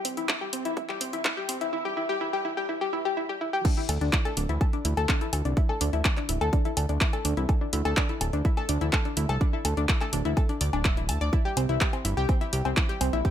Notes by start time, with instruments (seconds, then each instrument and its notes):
0.05 synth arpeggio sound C4, open hi-hat
0.17 synth arpeggio sound E4, closed hi-hat
0.29 synth arpeggio sound E4, kick, clap, closed hi-hat
0.41 synth arpeggio sound G4
0.53 synth arpeggio sound C4, open hi-hat
0.65 synth arpeggio sound E4, closed hi-hat
0.77 synth arpeggio sound E4, kick, closed hi-hat
0.89 synth arpeggio sound G4, clap
1.01 synth arpeggio sound C4, open hi-hat
1.13 synth arpeggio sound E4, closed hi-hat
1.25 synth arpeggio sound E4, kick, clap, closed hi-hat
1.37 synth arpeggio sound G4
1.49 synth arpeggio sound C4, open hi-hat
1.61 synth arpeggio sound E4, closed hi-hat
1.73 synth arpeggio sound E4
1.85 synth arpeggio sound G4
1.97 synth arpeggio sound E4
2.09 synth arpeggio sound G4
2.21 synth arpeggio sound E4
2.33 synth arpeggio sound G4
2.45 synth arpeggio sound E4
2.57 synth arpeggio sound G4
2.69 synth arpeggio sound E4
2.81 synth arpeggio sound G4
2.93 synth arpeggio sound E4
3.05 synth arpeggio sound G4
3.17 synth arpeggio sound E4
3.29 synth arpeggio sound G4
3.41 synth arpeggio sound E4
3.53 synth arpeggio sound G4
3.65 synth arpeggio sound D4, kick, closed hi-hat, crash
3.77 synth arpeggio sound E4
3.89 analog synth bass D2, synth arpeggio sound A4, open hi-hat, low woodblock
4.01 analog synth bass D2, synth arpeggio sound D4, closed hi-hat
4.13 synth arpeggio sound E4, kick, clap, closed hi-hat
4.25 synth arpeggio sound A4, closed hi-hat, low woodblock
4.37 analog synth bass D1, synth arpeggio sound D4, open hi-hat
4.49 analog synth bass D2, synth arpeggio sound E4, closed hi-hat
4.61 synth arpeggio sound A4, kick, closed hi-hat, low woodblock
4.73 synth arpeggio sound D4, closed hi-hat
4.85 analog synth bass D2, synth arpeggio sound E4, open hi-hat
4.97 analog synth bass D2, synth arpeggio sound A4, closed hi-hat, low woodblock
5.09 synth arpeggio sound D4, kick, clap, closed hi-hat
5.21 synth arpeggio sound E4, closed hi-hat
5.33 analog synth bass D2, synth arpeggio sound A4, open hi-hat, low woodblock
5.45 analog synth bass C2, synth arpeggio sound D4, closed hi-hat
5.57 synth arpeggio sound E4, kick, closed hi-hat
5.69 synth arpeggio sound A4, low woodblock
5.81 analog synth bass D2, synth arpeggio sound D4, open hi-hat
5.93 analog synth bass D2, synth arpeggio sound E4, closed hi-hat
6.05 synth arpeggio sound A4, kick, clap, closed hi-hat, low woodblock
6.17 synth arpeggio sound D4, clap, closed hi-hat
6.29 analog synth bass D1, synth arpeggio sound E4, open hi-hat
6.41 analog synth bass D2, synth arpeggio sound A4, closed hi-hat, low woodblock
6.53 synth arpeggio sound D4, kick, closed hi-hat
6.65 synth arpeggio sound E4, closed hi-hat
6.77 analog synth bass D2, synth arpeggio sound A4, open hi-hat, low woodblock
6.89 analog synth bass D2, synth arpeggio sound D4, closed hi-hat
7.01 synth arpeggio sound E4, kick, clap, closed hi-hat
7.13 synth arpeggio sound A4, closed hi-hat, low woodblock
7.25 analog synth bass D2, synth arpeggio sound D4, open hi-hat
7.37 analog synth bass C2, synth arpeggio sound E4, closed hi-hat
7.49 synth arpeggio sound A4, kick, closed hi-hat, low woodblock
7.61 synth arpeggio sound D4
7.73 analog synth bass D2, synth arpeggio sound E4, open hi-hat
7.85 analog synth bass D2, synth arpeggio sound A4, closed hi-hat, low woodblock
7.97 synth arpeggio sound D4, kick, clap, closed hi-hat
8.09 synth arpeggio sound E4, closed hi-hat
8.21 analog synth bass D1, synth arpeggio sound A4, open hi-hat, low woodblock
8.33 analog synth bass D2, synth arpeggio sound D4, closed hi-hat
8.45 synth arpeggio sound E4, kick, closed hi-hat
8.57 synth arpeggio sound A4, closed hi-hat, low woodblock
8.69 analog synth bass D2, synth arpeggio sound D4, open hi-hat
8.81 analog synth bass D2, synth arpeggio sound E4, closed hi-hat
8.93 synth arpeggio sound A4, kick, clap, closed hi-hat, low woodblock
9.05 synth arpeggio sound D4, closed hi-hat
9.17 analog synth bass D2, synth arpeggio sound E4, open hi-hat
9.29 analog synth bass C2, synth arpeggio sound A4, closed hi-hat, low woodblock
9.41 synth arpeggio sound D4, kick, closed hi-hat
9.53 synth arpeggio sound E4
9.65 analog synth bass D2, synth arpeggio sound A4, open hi-hat, low woodblock
9.77 analog synth bass D2, synth arpeggio sound D4, closed hi-hat
9.89 synth arpeggio sound E4, kick, clap, closed hi-hat
10.01 synth arpeggio sound A4, clap, closed hi-hat, low woodblock
10.13 analog synth bass D1, synth arpeggio sound D4, open hi-hat
10.25 analog synth bass D2, synth arpeggio sound E4, closed hi-hat
10.37 synth arpeggio sound A4, kick, closed hi-hat, low woodblock
10.49 synth arpeggio sound D4, closed hi-hat
10.61 analog synth bass D2, synth arpeggio sound D5, open hi-hat
10.73 analog synth bass D1, synth arpeggio sound D4, closed hi-hat, low woodblock
10.85 synth arpeggio sound E5, kick, clap, closed hi-hat
10.97 synth arpeggio sound E4, closed hi-hat
11.09 analog synth bass D2, synth arpeggio sound A5, open hi-hat, low woodblock
11.21 analog synth bass D2, synth arpeggio sound D5, closed hi-hat
11.33 synth arpeggio sound E4, kick, closed hi-hat
11.45 synth arpeggio sound G4
11.57 analog synth bass C2, synth arpeggio sound C4, open hi-hat, low woodblock
11.69 analog synth bass C2, synth arpeggio sound E4, closed hi-hat
11.81 synth arpeggio sound G4, kick, clap, closed hi-hat
11.93 synth arpeggio sound C4, closed hi-hat, low woodblock
12.05 analog synth bass G1, synth arpeggio sound E4, open hi-hat
12.17 analog synth bass C2, synth arpeggio sound G4, closed hi-hat
12.29 synth arpeggio sound C4, kick, closed hi-hat, low woodblock
12.41 synth arpeggio sound E4, closed hi-hat
12.53 analog synth bass C2, synth arpeggio sound G4, open hi-hat
12.65 analog synth bass C2, synth arpeggio sound C4, closed hi-hat, low woodblock
12.77 synth arpeggio sound E4, kick, clap, closed hi-hat
12.89 synth arpeggio sound G4, closed hi-hat
13.01 analog synth bass C2, synth arpeggio sound C4, open hi-hat, low woodblock
13.13 analog synth bass A#1, synth arpeggio sound E4, closed hi-hat
13.25 synth arpeggio sound G4, kick, closed hi-hat